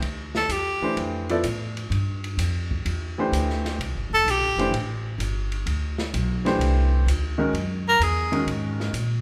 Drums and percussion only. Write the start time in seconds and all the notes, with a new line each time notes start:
0.02 ride
0.35 snare
0.49 hi-hat pedal, ride
0.97 ride
1.29 ride
1.44 hi-hat pedal, ride
1.77 ride
1.92 ride
2.24 ride
2.39 hi-hat pedal, ride
2.71 kick
2.86 ride
3.33 hi-hat pedal, ride
3.50 snare
3.65 snare, ride
3.81 ride
4.28 hi-hat pedal, ride
4.59 ride
4.74 ride
5.20 hi-hat pedal, ride
5.52 ride
5.67 ride
5.98 snare
6.14 hi-hat pedal, ride
6.46 snare, ride
6.61 ride
7.08 hi-hat pedal, ride
7.55 ride
8.01 hi-hat pedal, ride
8.33 ride
8.48 ride
8.80 snare
8.94 hi-hat pedal, ride